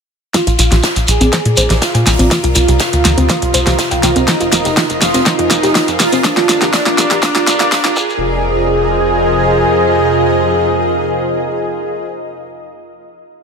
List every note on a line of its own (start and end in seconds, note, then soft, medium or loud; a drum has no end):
0.34 7.95 F2 medium
0.34 7.95 C3 medium
0.34 0.41 F4 medium
0.34 7.95 F4 medium
0.34 0.99 F4 loud
0.34 2.29 F4 medium
0.34 2.29 D5 medium
0.34 4.24 A#5 medium
0.34 2.29 D6 medium
0.34 kick loud
0.34 snare soft
0.34 closed hi-hat medium
0.34 ride medium
0.34 shekere soft
0.47 0.57 A#1 medium
0.47 0.57 F4 loud
0.47 closed hi-hat soft
0.47 ride soft
0.47 shekere soft
0.58 0.70 A#1 loud
0.58 0.66 F4 medium
0.58 open hi-hat loud
0.58 ride medium
0.58 shekere medium
0.71 0.82 A#1 medium
0.71 0.75 G4 medium
0.71 snare soft
0.71 closed hi-hat soft
0.71 shekere soft
0.78 2.31 D5 medium
0.83 0.90 F4 loud
0.83 kick loud
0.83 snare loud
0.83 closed hi-hat medium
0.83 ride medium
0.83 shekere soft
0.89 7.97 A#4 medium
0.96 1.06 A#1 medium
0.96 closed hi-hat soft
0.96 shekere soft
1.07 1.19 A#1 loud
1.07 1.72 G#4 loud
1.07 open hi-hat medium
1.07 ride medium
1.07 shekere medium
1.21 1.31 A#1 medium
1.21 1.27 C4 loud
1.21 closed hi-hat soft
1.21 shekere soft
1.32 1.37 C5 loud
1.32 kick loud
1.32 snare medium
1.32 closed hi-hat medium
1.32 ride medium
1.32 shekere medium
1.45 1.55 A#2 medium
1.45 closed hi-hat soft
1.57 1.68 A#1 loud
1.57 1.67 C5 loud
1.57 open hi-hat loud
1.57 ride medium
1.57 shekere loud
1.70 1.80 A#1 medium
1.70 1.74 G4 medium
1.70 snare soft
1.70 snare medium
1.70 closed hi-hat soft
1.70 shekere soft
1.82 1.89 F4 loud
1.82 4.18 F4 loud
1.82 kick loud
1.82 snare loud
1.82 closed hi-hat medium
1.82 ride medium
1.82 shekere soft
1.94 2.04 A#2 medium
1.94 2.04 G#5 loud
1.94 closed hi-hat soft
1.94 ride soft
1.94 shekere soft
2.06 2.17 A#1 loud
2.06 2.10 G#5 medium
2.06 snare soft
2.06 snare medium
2.06 open hi-hat medium
2.06 shekere medium
2.19 2.29 A#1 medium
2.19 2.25 C4 loud
2.19 closed hi-hat soft
2.19 shekere soft
2.31 2.38 F4 medium
2.31 4.26 G4 medium
2.31 6.21 C5 medium
2.31 4.26 D#6 medium
2.31 kick loud
2.31 snare medium
2.31 closed hi-hat medium
2.31 ride medium
2.31 shekere soft
2.44 2.54 C2 medium
2.44 2.53 F4 loud
2.44 closed hi-hat soft
2.44 shekere soft
2.55 2.66 C2 loud
2.55 2.62 F4 medium
2.55 open hi-hat loud
2.55 ride medium
2.55 shekere medium
2.68 2.78 C2 medium
2.68 2.72 G4 medium
2.68 closed hi-hat soft
2.68 shekere soft
2.79 2.87 F4 loud
2.79 kick loud
2.79 snare loud
2.79 closed hi-hat medium
2.79 ride medium
2.79 shekere medium
2.86 6.24 D#5 medium
2.93 3.03 D2 medium
2.93 closed hi-hat soft
2.93 shekere soft
3.05 3.15 D2 loud
3.05 snare medium
3.05 open hi-hat medium
3.05 ride medium
3.05 shekere medium
3.17 3.27 D2 medium
3.17 3.24 C4 loud
3.17 closed hi-hat soft
3.17 shekere soft
3.29 3.33 C5 loud
3.29 kick loud
3.29 snare medium
3.29 closed hi-hat medium
3.29 ride medium
3.29 shekere medium
3.42 3.52 C2 medium
3.42 closed hi-hat soft
3.54 3.65 C2 loud
3.54 3.64 C5 loud
3.54 open hi-hat loud
3.54 ride medium
3.54 shekere loud
3.66 3.77 C2 medium
3.66 3.71 G4 medium
3.66 snare medium
3.66 closed hi-hat soft
3.66 shekere soft
3.78 3.85 F4 loud
3.78 kick loud
3.78 snare loud
3.78 closed hi-hat medium
3.78 ride medium
3.78 shekere medium
3.91 4.01 C2 medium
3.91 4.01 G5 loud
3.91 closed hi-hat soft
3.91 ride soft
3.91 shekere soft
4.03 4.14 C2 loud
4.03 4.07 G5 medium
4.03 snare medium
4.03 open hi-hat loud
4.03 ride medium
4.03 shekere medium
4.16 4.26 C2 medium
4.16 4.22 C4 loud
4.16 closed hi-hat soft
4.16 shekere soft
4.28 4.92 D#4 loud
4.28 6.22 F4 medium
4.28 4.35 F4 medium
4.28 6.23 G#5 medium
4.28 6.22 D#6 medium
4.28 kick loud
4.28 snare medium
4.28 closed hi-hat medium
4.28 ride medium
4.28 shekere medium
4.40 4.50 F1 medium
4.40 4.50 F4 medium
4.40 closed hi-hat soft
4.40 ride soft
4.40 shekere soft
4.52 4.63 F1 loud
4.52 4.59 F4 medium
4.52 snare medium
4.52 open hi-hat loud
4.52 ride medium
4.52 shekere loud
4.65 4.75 F1 medium
4.65 4.69 G4 medium
4.65 snare soft
4.65 closed hi-hat soft
4.65 shekere soft
4.77 4.84 F4 medium
4.77 kick loud
4.77 snare medium
4.77 snare loud
4.77 closed hi-hat medium
4.77 ride medium
4.77 shekere medium
4.90 5.00 F1 medium
4.90 closed hi-hat soft
4.90 shekere soft
5.01 5.12 F1 loud
5.01 5.24 F4 medium
5.01 snare medium
5.01 snare loud
5.01 open hi-hat loud
5.01 ride medium
5.01 shekere loud
5.14 5.24 F1 medium
5.14 5.21 C4 medium
5.14 snare loud
5.14 closed hi-hat soft
5.14 ride medium
5.14 shekere soft
5.26 5.90 D#4 loud
5.26 5.33 F4 medium
5.26 kick loud
5.26 snare medium
5.26 closed hi-hat medium
5.26 ride medium
5.26 shekere medium
5.39 5.49 F2 medium
5.39 5.48 F4 loud
5.39 closed hi-hat soft
5.50 5.61 F1 loud
5.50 5.57 F4 medium
5.50 snare medium
5.50 open hi-hat loud
5.50 ride medium
5.50 shekere loud
5.63 5.73 F1 medium
5.63 5.67 G4 medium
5.63 snare medium
5.63 closed hi-hat soft
5.63 shekere soft
5.75 5.82 F4 loud
5.75 kick loud
5.75 snare medium
5.75 snare loud
5.75 closed hi-hat medium
5.75 ride medium
5.75 shekere medium
5.88 5.98 F2 medium
5.88 closed hi-hat soft
5.88 ride soft
5.88 shekere soft
5.99 6.11 F1 loud
5.99 6.22 F4 medium
5.99 snare soft
5.99 snare medium
5.99 open hi-hat medium
5.99 open hi-hat loud
5.99 shekere medium
6.12 6.23 F1 medium
6.12 6.19 C4 loud
6.12 closed hi-hat soft
6.12 shekere soft
6.24 6.72 D4 loud
6.24 6.31 F4 medium
6.24 7.95 G4 medium
6.24 7.95 D5 medium
6.24 7.95 A#5 medium
6.24 7.95 D6 medium
6.24 kick loud
6.24 snare medium
6.24 closed hi-hat medium
6.24 ride medium
6.24 shekere medium
6.37 6.47 G1 medium
6.37 6.47 F4 loud
6.37 snare medium
6.37 closed hi-hat soft
6.37 shekere soft
6.49 6.60 G1 loud
6.49 6.56 F4 medium
6.49 snare medium
6.49 open hi-hat loud
6.49 ride medium
6.49 shekere medium
6.62 6.72 G1 medium
6.62 6.66 G4 medium
6.62 snare medium
6.62 closed hi-hat soft
6.62 shekere soft
6.73 7.21 D4 loud
6.73 6.80 F4 medium
6.73 kick loud
6.73 snare loud
6.73 closed hi-hat medium
6.73 ride medium
6.73 shekere soft
6.86 6.96 A#1 medium
6.86 6.96 F4 loud
6.86 snare medium
6.86 closed hi-hat soft
6.86 shekere soft
6.98 7.09 A#1 loud
6.98 7.05 F4 medium
6.98 snare loud
6.98 open hi-hat loud
6.98 ride medium
6.98 shekere loud
7.11 7.21 A#1 medium
7.11 7.15 G4 medium
7.11 snare medium
7.11 closed hi-hat soft
7.11 shekere soft
7.22 7.45 D4 loud
7.22 7.30 F4 medium
7.22 kick loud
7.22 snare loud
7.22 closed hi-hat medium
7.22 ride medium
7.22 shekere medium
7.35 7.45 G1 medium
7.35 7.45 F4 loud
7.35 snare medium
7.35 closed hi-hat soft
7.47 7.58 G1 loud
7.47 7.70 D4 loud
7.47 7.54 F4 medium
7.47 snare loud
7.47 open hi-hat loud
7.47 ride medium
7.47 shekere loud
7.60 7.70 G1 medium
7.60 7.70 F4 loud
7.60 snare loud
7.60 closed hi-hat soft
7.60 shekere soft
7.72 7.95 D4 loud
7.72 7.79 F4 medium
7.72 kick loud
7.72 snare loud
7.72 closed hi-hat medium
7.72 ride medium
7.72 shekere medium
7.84 7.95 F1 medium
7.84 7.94 F4 loud
7.84 snare medium
7.84 closed hi-hat soft
7.84 ride soft
7.84 shekere soft
7.96 9.65 F1 loud
7.96 12.06 F2 medium
7.96 12.06 C3 medium
7.96 12.05 F4 medium
7.96 8.42 F4 medium
7.96 12.06 F4 medium
7.96 12.06 G#4 loud
7.96 12.06 C5 medium
7.96 12.06 D#5 medium
7.96 12.06 G#5 medium
7.96 kick loud
7.96 shekere medium
8.04 12.13 A#4 medium
8.10 shekere soft
8.36 12.46 D#5 medium